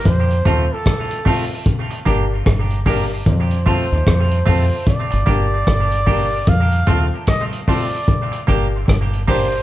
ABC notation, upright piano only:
X:1
M:4/4
L:1/16
Q:"Swing 16ths" 1/4=75
K:Gm
V:1 name="Upright piano"
z2 [CFA] z3 [CFA] z3 [DGB] z3 [DGB] z | z2 [CFA] z3 [CFA] z3 [DGB] z3 [DGB] z | z2 [CFA] z3 [CFA] z3 [DGB] z3 [DGB] z |]